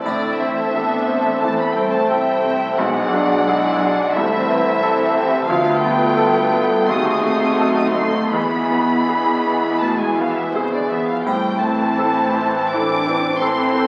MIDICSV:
0, 0, Header, 1, 11, 480
1, 0, Start_track
1, 0, Key_signature, 0, "minor"
1, 0, Tempo, 684151
1, 39, Time_signature, 4, 2, 24, 8
1, 2916, Tempo, 666667
1, 4356, Tempo, 722022
1, 5796, Tempo, 748130
1, 6756, Tempo, 727273
1, 8676, Tempo, 677966
1, 9485, End_track
2, 0, Start_track
2, 0, Title_t, "Violin section"
2, 0, Program_c, 0, 48
2, 35, Note_on_c, 0, 74, 61
2, 265, Note_off_c, 0, 74, 0
2, 279, Note_on_c, 0, 76, 51
2, 997, Note_off_c, 0, 76, 0
2, 1001, Note_on_c, 0, 81, 62
2, 1118, Note_off_c, 0, 81, 0
2, 1123, Note_on_c, 0, 83, 54
2, 1237, Note_on_c, 0, 79, 57
2, 1239, Note_off_c, 0, 83, 0
2, 1356, Note_off_c, 0, 79, 0
2, 1356, Note_on_c, 0, 81, 53
2, 1471, Note_on_c, 0, 79, 58
2, 1475, Note_off_c, 0, 81, 0
2, 1956, Note_off_c, 0, 79, 0
2, 1960, Note_on_c, 0, 78, 75
2, 2899, Note_off_c, 0, 78, 0
2, 2915, Note_on_c, 0, 76, 76
2, 3854, Note_off_c, 0, 76, 0
2, 3873, Note_on_c, 0, 77, 77
2, 4106, Note_on_c, 0, 79, 80
2, 4108, Note_off_c, 0, 77, 0
2, 4822, Note_off_c, 0, 79, 0
2, 4840, Note_on_c, 0, 84, 59
2, 4887, Note_on_c, 0, 87, 56
2, 4895, Note_off_c, 0, 84, 0
2, 4946, Note_off_c, 0, 87, 0
2, 4949, Note_on_c, 0, 84, 56
2, 5004, Note_off_c, 0, 84, 0
2, 5012, Note_on_c, 0, 87, 63
2, 5063, Note_off_c, 0, 87, 0
2, 5064, Note_on_c, 0, 84, 60
2, 5112, Note_on_c, 0, 87, 59
2, 5115, Note_off_c, 0, 84, 0
2, 5167, Note_off_c, 0, 87, 0
2, 5167, Note_on_c, 0, 84, 57
2, 5222, Note_off_c, 0, 84, 0
2, 5224, Note_on_c, 0, 87, 56
2, 5277, Note_off_c, 0, 87, 0
2, 5279, Note_on_c, 0, 84, 60
2, 5327, Note_on_c, 0, 87, 52
2, 5333, Note_off_c, 0, 84, 0
2, 5384, Note_off_c, 0, 87, 0
2, 5387, Note_on_c, 0, 84, 52
2, 5431, Note_on_c, 0, 87, 59
2, 5442, Note_off_c, 0, 84, 0
2, 5491, Note_off_c, 0, 87, 0
2, 5494, Note_on_c, 0, 84, 70
2, 5796, Note_off_c, 0, 84, 0
2, 5799, Note_on_c, 0, 83, 77
2, 6739, Note_off_c, 0, 83, 0
2, 6750, Note_on_c, 0, 81, 59
2, 6874, Note_off_c, 0, 81, 0
2, 6875, Note_on_c, 0, 80, 46
2, 6995, Note_off_c, 0, 80, 0
2, 6998, Note_on_c, 0, 77, 47
2, 7119, Note_off_c, 0, 77, 0
2, 7120, Note_on_c, 0, 76, 45
2, 7237, Note_on_c, 0, 72, 49
2, 7240, Note_off_c, 0, 76, 0
2, 7358, Note_off_c, 0, 72, 0
2, 7360, Note_on_c, 0, 74, 49
2, 7472, Note_on_c, 0, 76, 47
2, 7479, Note_off_c, 0, 74, 0
2, 7594, Note_off_c, 0, 76, 0
2, 7598, Note_on_c, 0, 77, 49
2, 7706, Note_on_c, 0, 79, 69
2, 7714, Note_off_c, 0, 77, 0
2, 7939, Note_off_c, 0, 79, 0
2, 7944, Note_on_c, 0, 81, 57
2, 8667, Note_on_c, 0, 86, 75
2, 8677, Note_off_c, 0, 81, 0
2, 9154, Note_off_c, 0, 86, 0
2, 9155, Note_on_c, 0, 84, 66
2, 9485, Note_off_c, 0, 84, 0
2, 9485, End_track
3, 0, Start_track
3, 0, Title_t, "French horn section"
3, 0, Program_c, 1, 60
3, 994, Note_on_c, 1, 69, 49
3, 1444, Note_off_c, 1, 69, 0
3, 1471, Note_on_c, 1, 72, 50
3, 1955, Note_off_c, 1, 72, 0
3, 1958, Note_on_c, 1, 68, 52
3, 2192, Note_off_c, 1, 68, 0
3, 2201, Note_on_c, 1, 68, 55
3, 2903, Note_off_c, 1, 68, 0
3, 2919, Note_on_c, 1, 69, 59
3, 3151, Note_on_c, 1, 71, 59
3, 3155, Note_off_c, 1, 69, 0
3, 3395, Note_off_c, 1, 71, 0
3, 3399, Note_on_c, 1, 69, 52
3, 3637, Note_off_c, 1, 69, 0
3, 3640, Note_on_c, 1, 67, 54
3, 3876, Note_off_c, 1, 67, 0
3, 3879, Note_on_c, 1, 65, 56
3, 4351, Note_off_c, 1, 65, 0
3, 4364, Note_on_c, 1, 69, 59
3, 4842, Note_off_c, 1, 69, 0
3, 4847, Note_on_c, 1, 68, 61
3, 5317, Note_off_c, 1, 68, 0
3, 5318, Note_on_c, 1, 66, 43
3, 5550, Note_off_c, 1, 66, 0
3, 5552, Note_on_c, 1, 69, 46
3, 5797, Note_off_c, 1, 69, 0
3, 5802, Note_on_c, 1, 68, 44
3, 6168, Note_off_c, 1, 68, 0
3, 6277, Note_on_c, 1, 62, 46
3, 6502, Note_off_c, 1, 62, 0
3, 6515, Note_on_c, 1, 64, 42
3, 7237, Note_off_c, 1, 64, 0
3, 7239, Note_on_c, 1, 68, 43
3, 7704, Note_off_c, 1, 68, 0
3, 8676, Note_on_c, 1, 69, 52
3, 8904, Note_off_c, 1, 69, 0
3, 8918, Note_on_c, 1, 71, 50
3, 9156, Note_on_c, 1, 72, 54
3, 9158, Note_off_c, 1, 71, 0
3, 9391, Note_on_c, 1, 69, 56
3, 9396, Note_off_c, 1, 72, 0
3, 9485, Note_off_c, 1, 69, 0
3, 9485, End_track
4, 0, Start_track
4, 0, Title_t, "Violin section"
4, 0, Program_c, 2, 48
4, 34, Note_on_c, 2, 69, 39
4, 34, Note_on_c, 2, 72, 42
4, 969, Note_off_c, 2, 72, 0
4, 999, Note_on_c, 2, 72, 41
4, 1445, Note_off_c, 2, 69, 0
4, 1465, Note_off_c, 2, 72, 0
4, 1476, Note_on_c, 2, 64, 41
4, 1477, Note_on_c, 2, 76, 44
4, 1712, Note_off_c, 2, 76, 0
4, 1721, Note_on_c, 2, 76, 48
4, 1955, Note_off_c, 2, 76, 0
4, 1958, Note_off_c, 2, 64, 0
4, 1963, Note_on_c, 2, 74, 45
4, 1964, Note_on_c, 2, 68, 43
4, 2435, Note_off_c, 2, 68, 0
4, 2443, Note_on_c, 2, 68, 46
4, 2909, Note_off_c, 2, 68, 0
4, 2920, Note_off_c, 2, 74, 0
4, 2923, Note_on_c, 2, 64, 49
4, 2923, Note_on_c, 2, 72, 49
4, 3400, Note_off_c, 2, 72, 0
4, 3402, Note_off_c, 2, 64, 0
4, 3404, Note_on_c, 2, 69, 48
4, 3408, Note_on_c, 2, 72, 49
4, 3869, Note_off_c, 2, 72, 0
4, 3877, Note_off_c, 2, 69, 0
4, 3880, Note_on_c, 2, 71, 56
4, 3881, Note_on_c, 2, 65, 54
4, 4816, Note_off_c, 2, 65, 0
4, 4816, Note_off_c, 2, 71, 0
4, 4839, Note_on_c, 2, 69, 55
4, 4842, Note_on_c, 2, 66, 53
4, 5779, Note_off_c, 2, 66, 0
4, 5794, Note_on_c, 2, 64, 41
4, 5795, Note_on_c, 2, 68, 44
4, 5797, Note_off_c, 2, 69, 0
4, 7552, Note_off_c, 2, 64, 0
4, 7579, Note_off_c, 2, 68, 0
4, 7713, Note_on_c, 2, 69, 43
4, 7716, Note_on_c, 2, 64, 43
4, 9132, Note_off_c, 2, 69, 0
4, 9134, Note_off_c, 2, 64, 0
4, 9152, Note_on_c, 2, 64, 51
4, 9152, Note_on_c, 2, 69, 50
4, 9485, Note_off_c, 2, 64, 0
4, 9485, Note_off_c, 2, 69, 0
4, 9485, End_track
5, 0, Start_track
5, 0, Title_t, "Clarinet"
5, 0, Program_c, 3, 71
5, 37, Note_on_c, 3, 60, 45
5, 971, Note_off_c, 3, 60, 0
5, 999, Note_on_c, 3, 60, 44
5, 1938, Note_off_c, 3, 60, 0
5, 1955, Note_on_c, 3, 62, 50
5, 2916, Note_on_c, 3, 64, 58
5, 2926, Note_off_c, 3, 62, 0
5, 3873, Note_off_c, 3, 64, 0
5, 3877, Note_on_c, 3, 65, 62
5, 4843, Note_on_c, 3, 66, 57
5, 4853, Note_off_c, 3, 65, 0
5, 5687, Note_off_c, 3, 66, 0
5, 5800, Note_on_c, 3, 64, 50
5, 7474, Note_off_c, 3, 64, 0
5, 7716, Note_on_c, 3, 64, 43
5, 7942, Note_off_c, 3, 64, 0
5, 7945, Note_on_c, 3, 64, 38
5, 8181, Note_off_c, 3, 64, 0
5, 8195, Note_on_c, 3, 64, 41
5, 8428, Note_off_c, 3, 64, 0
5, 8432, Note_on_c, 3, 64, 41
5, 8672, Note_off_c, 3, 64, 0
5, 8677, Note_on_c, 3, 64, 46
5, 8917, Note_off_c, 3, 64, 0
5, 8927, Note_on_c, 3, 64, 38
5, 9158, Note_off_c, 3, 64, 0
5, 9169, Note_on_c, 3, 64, 45
5, 9398, Note_off_c, 3, 64, 0
5, 9411, Note_on_c, 3, 64, 51
5, 9485, Note_off_c, 3, 64, 0
5, 9485, End_track
6, 0, Start_track
6, 0, Title_t, "Bassoon"
6, 0, Program_c, 4, 70
6, 40, Note_on_c, 4, 57, 43
6, 972, Note_off_c, 4, 57, 0
6, 1000, Note_on_c, 4, 57, 44
6, 1961, Note_on_c, 4, 56, 47
6, 1972, Note_off_c, 4, 57, 0
6, 2914, Note_off_c, 4, 56, 0
6, 2918, Note_on_c, 4, 57, 53
6, 3856, Note_off_c, 4, 57, 0
6, 3873, Note_on_c, 4, 57, 59
6, 4812, Note_off_c, 4, 57, 0
6, 4844, Note_on_c, 4, 57, 55
6, 5687, Note_off_c, 4, 57, 0
6, 5800, Note_on_c, 4, 56, 47
6, 7474, Note_off_c, 4, 56, 0
6, 7715, Note_on_c, 4, 60, 43
6, 7938, Note_off_c, 4, 60, 0
6, 7942, Note_on_c, 4, 60, 40
6, 8179, Note_off_c, 4, 60, 0
6, 8187, Note_on_c, 4, 60, 43
6, 8428, Note_off_c, 4, 60, 0
6, 8432, Note_on_c, 4, 60, 39
6, 8669, Note_off_c, 4, 60, 0
6, 8673, Note_on_c, 4, 60, 44
6, 8913, Note_off_c, 4, 60, 0
6, 8918, Note_on_c, 4, 60, 40
6, 9148, Note_off_c, 4, 60, 0
6, 9152, Note_on_c, 4, 60, 48
6, 9390, Note_off_c, 4, 60, 0
6, 9400, Note_on_c, 4, 60, 44
6, 9485, Note_off_c, 4, 60, 0
6, 9485, End_track
7, 0, Start_track
7, 0, Title_t, "Grand piano"
7, 0, Program_c, 5, 0
7, 0, Control_c, 5, 64, 127
7, 37, Note_on_c, 5, 45, 47
7, 52, Control_c, 5, 64, 0
7, 170, Control_c, 5, 64, 127
7, 280, Note_on_c, 5, 60, 38
7, 530, Note_on_c, 5, 69, 39
7, 666, Note_off_c, 5, 60, 0
7, 765, Note_on_c, 5, 60, 37
7, 908, Note_off_c, 5, 69, 0
7, 971, Note_off_c, 5, 45, 0
7, 1006, Note_on_c, 5, 52, 35
7, 1142, Note_off_c, 5, 60, 0
7, 1232, Note_on_c, 5, 60, 37
7, 1383, Note_off_c, 5, 52, 0
7, 1476, Note_on_c, 5, 69, 40
7, 1617, Note_off_c, 5, 60, 0
7, 1715, Note_on_c, 5, 60, 39
7, 1861, Note_off_c, 5, 69, 0
7, 1953, Note_on_c, 5, 35, 56
7, 1957, Note_off_c, 5, 60, 0
7, 1972, Control_c, 5, 64, 0
7, 2089, Control_c, 5, 64, 127
7, 2201, Note_on_c, 5, 62, 44
7, 2442, Note_on_c, 5, 68, 48
7, 2586, Note_off_c, 5, 62, 0
7, 2685, Note_on_c, 5, 62, 45
7, 2823, Note_off_c, 5, 68, 0
7, 2887, Note_off_c, 5, 35, 0
7, 2920, Note_off_c, 5, 62, 0
7, 2923, Note_on_c, 5, 36, 54
7, 2931, Control_c, 5, 64, 0
7, 3047, Control_c, 5, 64, 127
7, 3165, Note_on_c, 5, 60, 46
7, 3400, Note_on_c, 5, 69, 51
7, 3545, Note_off_c, 5, 60, 0
7, 3646, Note_on_c, 5, 60, 50
7, 3780, Note_off_c, 5, 69, 0
7, 3848, Note_off_c, 5, 36, 0
7, 3878, Note_on_c, 5, 38, 61
7, 3879, Note_off_c, 5, 60, 0
7, 3888, Control_c, 5, 64, 0
7, 3991, Control_c, 5, 64, 127
7, 4120, Note_on_c, 5, 59, 49
7, 4363, Note_on_c, 5, 69, 50
7, 4502, Note_off_c, 5, 59, 0
7, 4596, Note_on_c, 5, 59, 47
7, 4745, Note_off_c, 5, 69, 0
7, 4815, Note_off_c, 5, 38, 0
7, 4838, Note_on_c, 5, 39, 59
7, 4840, Note_off_c, 5, 59, 0
7, 4853, Control_c, 5, 64, 0
7, 4978, Control_c, 5, 64, 127
7, 5078, Note_on_c, 5, 57, 42
7, 5318, Note_on_c, 5, 69, 43
7, 5456, Note_off_c, 5, 57, 0
7, 5553, Note_on_c, 5, 57, 40
7, 5701, Note_off_c, 5, 69, 0
7, 5769, Note_off_c, 5, 39, 0
7, 5797, Note_off_c, 5, 57, 0
7, 5800, Note_on_c, 5, 40, 52
7, 5810, Control_c, 5, 64, 0
7, 5930, Control_c, 5, 64, 127
7, 6041, Note_on_c, 5, 59, 40
7, 6287, Note_on_c, 5, 68, 39
7, 6427, Note_off_c, 5, 59, 0
7, 6524, Note_on_c, 5, 59, 36
7, 6667, Note_off_c, 5, 68, 0
7, 6733, Note_off_c, 5, 40, 0
7, 6761, Note_on_c, 5, 47, 36
7, 6904, Note_off_c, 5, 59, 0
7, 7002, Note_on_c, 5, 59, 33
7, 7145, Note_off_c, 5, 47, 0
7, 7242, Note_on_c, 5, 68, 36
7, 7385, Note_off_c, 5, 59, 0
7, 7483, Note_on_c, 5, 59, 35
7, 7622, Note_off_c, 5, 68, 0
7, 7708, Note_on_c, 5, 45, 48
7, 7716, Note_off_c, 5, 59, 0
7, 7726, Control_c, 5, 64, 0
7, 7830, Control_c, 5, 64, 127
7, 7953, Note_on_c, 5, 60, 40
7, 8188, Note_on_c, 5, 69, 44
7, 8337, Note_off_c, 5, 60, 0
7, 8439, Note_on_c, 5, 60, 41
7, 8584, Note_off_c, 5, 69, 0
7, 8650, Note_off_c, 5, 45, 0
7, 8683, Note_on_c, 5, 52, 39
7, 8829, Note_off_c, 5, 60, 0
7, 8925, Note_on_c, 5, 60, 44
7, 9068, Note_off_c, 5, 52, 0
7, 9163, Note_on_c, 5, 69, 48
7, 9304, Note_off_c, 5, 60, 0
7, 9398, Note_on_c, 5, 60, 50
7, 9485, Note_off_c, 5, 60, 0
7, 9485, Note_off_c, 5, 69, 0
7, 9485, End_track
8, 0, Start_track
8, 0, Title_t, "Viola section"
8, 0, Program_c, 6, 48
8, 39, Note_on_c, 6, 57, 40
8, 39, Note_on_c, 6, 64, 38
8, 498, Note_off_c, 6, 57, 0
8, 498, Note_off_c, 6, 64, 0
8, 521, Note_on_c, 6, 59, 40
8, 523, Note_on_c, 6, 62, 39
8, 988, Note_off_c, 6, 59, 0
8, 998, Note_off_c, 6, 62, 0
8, 998, Note_on_c, 6, 60, 42
8, 999, Note_on_c, 6, 57, 40
8, 1938, Note_off_c, 6, 57, 0
8, 1956, Note_on_c, 6, 56, 48
8, 1956, Note_on_c, 6, 59, 45
8, 1957, Note_off_c, 6, 60, 0
8, 2194, Note_off_c, 6, 56, 0
8, 2194, Note_on_c, 6, 54, 49
8, 2433, Note_on_c, 6, 56, 45
8, 2433, Note_on_c, 6, 64, 51
8, 2438, Note_off_c, 6, 54, 0
8, 2440, Note_off_c, 6, 59, 0
8, 2676, Note_on_c, 6, 62, 51
8, 2677, Note_off_c, 6, 64, 0
8, 2913, Note_off_c, 6, 56, 0
8, 2915, Note_off_c, 6, 62, 0
8, 2918, Note_on_c, 6, 57, 49
8, 2918, Note_on_c, 6, 60, 50
8, 3390, Note_off_c, 6, 57, 0
8, 3390, Note_off_c, 6, 60, 0
8, 3397, Note_on_c, 6, 52, 52
8, 3398, Note_on_c, 6, 60, 54
8, 3864, Note_off_c, 6, 60, 0
8, 3873, Note_off_c, 6, 52, 0
8, 3876, Note_on_c, 6, 57, 57
8, 3878, Note_on_c, 6, 59, 56
8, 4814, Note_off_c, 6, 57, 0
8, 4815, Note_off_c, 6, 59, 0
8, 4842, Note_on_c, 6, 57, 55
8, 4842, Note_on_c, 6, 63, 56
8, 5779, Note_off_c, 6, 57, 0
8, 5798, Note_off_c, 6, 63, 0
8, 5798, Note_on_c, 6, 52, 47
8, 5798, Note_on_c, 6, 59, 49
8, 7554, Note_off_c, 6, 59, 0
8, 7581, Note_off_c, 6, 52, 0
8, 7714, Note_on_c, 6, 60, 45
8, 7716, Note_on_c, 6, 52, 45
8, 9133, Note_off_c, 6, 52, 0
8, 9133, Note_off_c, 6, 60, 0
8, 9160, Note_on_c, 6, 52, 52
8, 9161, Note_on_c, 6, 60, 51
8, 9485, Note_off_c, 6, 52, 0
8, 9485, Note_off_c, 6, 60, 0
8, 9485, End_track
9, 0, Start_track
9, 0, Title_t, "Cello section"
9, 0, Program_c, 7, 48
9, 40, Note_on_c, 7, 50, 47
9, 268, Note_off_c, 7, 50, 0
9, 288, Note_on_c, 7, 52, 44
9, 1000, Note_on_c, 7, 57, 52
9, 1001, Note_off_c, 7, 52, 0
9, 1118, Note_off_c, 7, 57, 0
9, 1120, Note_on_c, 7, 59, 47
9, 1235, Note_on_c, 7, 55, 45
9, 1237, Note_off_c, 7, 59, 0
9, 1355, Note_off_c, 7, 55, 0
9, 1357, Note_on_c, 7, 57, 44
9, 1474, Note_on_c, 7, 55, 50
9, 1476, Note_off_c, 7, 57, 0
9, 1957, Note_off_c, 7, 55, 0
9, 1959, Note_on_c, 7, 54, 57
9, 2899, Note_off_c, 7, 54, 0
9, 2917, Note_on_c, 7, 52, 65
9, 3874, Note_off_c, 7, 52, 0
9, 3877, Note_on_c, 7, 53, 61
9, 4110, Note_off_c, 7, 53, 0
9, 4118, Note_on_c, 7, 55, 61
9, 4827, Note_off_c, 7, 55, 0
9, 4841, Note_on_c, 7, 60, 67
9, 5798, Note_off_c, 7, 60, 0
9, 5798, Note_on_c, 7, 59, 53
9, 6739, Note_off_c, 7, 59, 0
9, 6757, Note_on_c, 7, 57, 50
9, 6875, Note_on_c, 7, 56, 43
9, 6878, Note_off_c, 7, 57, 0
9, 6996, Note_on_c, 7, 53, 44
9, 6997, Note_off_c, 7, 56, 0
9, 7118, Note_off_c, 7, 53, 0
9, 7118, Note_on_c, 7, 52, 39
9, 7236, Note_on_c, 7, 48, 43
9, 7239, Note_off_c, 7, 52, 0
9, 7357, Note_off_c, 7, 48, 0
9, 7358, Note_on_c, 7, 50, 41
9, 7478, Note_off_c, 7, 50, 0
9, 7479, Note_on_c, 7, 52, 43
9, 7595, Note_off_c, 7, 52, 0
9, 7602, Note_on_c, 7, 53, 44
9, 7714, Note_on_c, 7, 55, 53
9, 7716, Note_off_c, 7, 53, 0
9, 7948, Note_off_c, 7, 55, 0
9, 7951, Note_on_c, 7, 57, 49
9, 8680, Note_off_c, 7, 57, 0
9, 8681, Note_on_c, 7, 62, 63
9, 9159, Note_on_c, 7, 60, 55
9, 9162, Note_off_c, 7, 62, 0
9, 9485, Note_off_c, 7, 60, 0
9, 9485, End_track
10, 0, Start_track
10, 0, Title_t, "Double bass section"
10, 0, Program_c, 8, 48
10, 38, Note_on_c, 8, 33, 43
10, 1447, Note_off_c, 8, 33, 0
10, 1475, Note_on_c, 8, 36, 43
10, 1948, Note_off_c, 8, 36, 0
10, 1958, Note_on_c, 8, 35, 48
10, 2916, Note_on_c, 8, 36, 58
10, 2917, Note_off_c, 8, 35, 0
10, 3871, Note_on_c, 8, 38, 58
10, 3874, Note_off_c, 8, 36, 0
10, 4812, Note_off_c, 8, 38, 0
10, 4835, Note_on_c, 8, 39, 56
10, 5301, Note_off_c, 8, 39, 0
10, 5311, Note_on_c, 8, 42, 47
10, 5795, Note_on_c, 8, 40, 49
10, 5796, Note_off_c, 8, 42, 0
10, 7553, Note_off_c, 8, 40, 0
10, 7710, Note_on_c, 8, 33, 47
10, 9485, Note_off_c, 8, 33, 0
10, 9485, End_track
11, 0, Start_track
11, 0, Title_t, "Drums"
11, 41, Note_on_c, 9, 81, 29
11, 111, Note_off_c, 9, 81, 0
11, 7714, Note_on_c, 9, 81, 29
11, 7780, Note_off_c, 9, 81, 0
11, 9485, End_track
0, 0, End_of_file